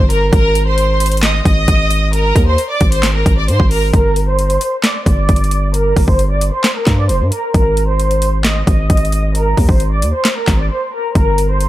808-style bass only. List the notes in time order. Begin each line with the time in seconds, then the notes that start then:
0.00 G1
0.33 G#1
1.45 G#1
1.68 G#1
2.36 D#2
2.81 G#1
3.26 G#1
3.48 G#2
3.60 G#1
3.93 G1
5.06 G1
5.29 G1
5.96 G1
6.08 G1
6.87 G2
7.09 F1
7.21 G2
7.54 G#1
8.67 G#1
8.90 G#1
9.57 D#2
9.69 G#1
10.02 D#2
10.48 G#1
11.15 G1